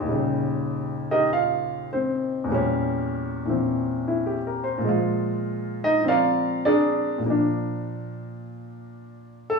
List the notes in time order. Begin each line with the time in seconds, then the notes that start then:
0.00 D#2
0.04 A#2
0.08 C#3 G3
1.11 D#4 G4 A#4 D#5
1.33 F4 F5
1.93 C4 C5
2.44 E2
2.48 A#2 G3
2.55 C#4
3.45 A#2 E3
3.49 C4
4.08 E4
4.26 G4
4.47 A#4
4.64 C5
4.78 A#2 F3
4.84 G#3
4.89 F4
5.84 D#4 D#5
6.01 F3 C4
6.08 F4 A#4 D5 F5
6.65 D4 G#4 A#4 D5
7.18 A#2
7.23 F3 A#3
7.30 D4
9.50 A4